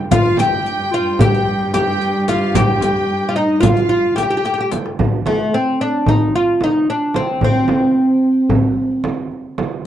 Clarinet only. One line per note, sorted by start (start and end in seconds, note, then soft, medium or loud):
0.11 0.41 F4 medium
0.39 0.93 G4 medium
0.91 1.21 F4 medium
1.20 1.74 G4 medium
1.74 2.51 G4 medium
2.55 3.38 G4 medium
3.37 3.66 D#4 medium
3.64 3.91 F4 medium
3.92 4.19 F4 medium
4.18 4.78 G4 medium